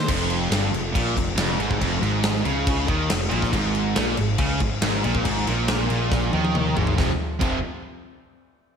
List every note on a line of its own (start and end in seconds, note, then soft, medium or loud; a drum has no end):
0.07 0.49 F1 medium
0.07 0.50 F2 loud
0.07 kick loud
0.07 crash loud
0.07 crash medium
0.30 crash medium
0.51 0.71 G1 loud
0.51 0.73 G2 loud
0.51 snare loud
0.51 crash medium
0.73 0.93 F1 medium
0.73 0.91 F2 medium
0.73 crash medium
0.95 1.15 A#1 loud
0.95 1.16 A#2 loud
0.95 kick loud
0.95 crash medium
1.17 1.36 F1 medium
1.17 1.34 F2 medium
1.17 kick medium
1.17 crash medium
1.36 1.57 F1 loud
1.36 1.57 F2 loud
1.36 snare loud
1.36 crash medium
1.40 1.60 F2 loud
1.57 1.79 G#1 loud
1.57 1.78 G#2 loud
1.57 crash medium
1.61 1.81 G#2 loud
1.71 kick medium
1.81 2.01 F1 loud
1.81 2.03 F2 loud
1.81 kick loud
1.81 crash medium
2.00 2.42 G#1 loud
2.00 2.44 G#2 loud
2.00 crash medium
2.05 2.46 G#2 loud
2.23 snare loud
2.23 crash medium
2.45 2.85 C#2 medium
2.45 2.89 C#3 loud
2.45 crash medium
2.67 kick loud
2.67 crash medium
2.88 3.08 D#2 medium
2.88 3.10 D#3 loud
2.88 kick medium
2.88 crash medium
3.10 3.30 F1 medium
3.10 3.28 F2 medium
3.10 snare loud
3.10 crash medium
3.31 3.52 A#1 loud
3.31 3.53 A#2 loud
3.31 crash medium
3.42 kick medium
3.42 snare soft
3.53 3.93 G#1 loud
3.53 3.96 G#2 loud
3.53 kick loud
3.53 crash medium
3.75 crash medium
3.96 4.16 A#1 loud
3.96 4.17 A#2 loud
3.96 snare loud
3.96 crash medium
4.17 4.38 G#1 medium
4.17 4.35 G#2 medium
4.17 crash medium
4.38 4.59 C#2 loud
4.38 4.60 C#3 loud
4.38 kick loud
4.38 crash medium
4.60 4.81 G#1 medium
4.60 4.78 G#2 medium
4.60 kick medium
4.60 crash medium
4.82 5.02 G#1 loud
4.82 5.03 G#2 loud
4.82 snare loud
4.82 crash medium
5.03 5.24 A#1 medium
5.03 5.24 A#2 loud
5.03 crash medium
5.15 kick loud
5.25 5.45 G#1 medium
5.25 5.46 G#2 loud
5.25 kick loud
5.25 crash medium
5.47 5.87 A#1 loud
5.47 5.90 A#2 loud
5.47 crash medium
5.68 snare loud
5.68 crash medium
5.90 6.30 A#1 loud
5.90 6.33 A#2 loud
5.90 crash medium
6.12 kick loud
6.12 snare medium
6.33 6.74 D#2 medium
6.33 6.76 D#3 loud
6.33 high tom medium
6.45 high tom medium
6.55 mid tom medium
6.77 6.97 G#1 loud
6.77 6.97 G#2 loud
6.77 floor tom loud
6.87 floor tom medium
6.98 7.10 F1 loud
6.98 7.11 F2 medium
6.98 7.11 C3 loud
6.98 7.12 F3 loud
6.98 kick loud
6.98 snare medium
7.41 7.61 F1 medium
7.41 7.58 F2 loud
7.41 7.58 C3 loud
7.41 7.59 F3 loud
7.41 kick loud
7.41 crash medium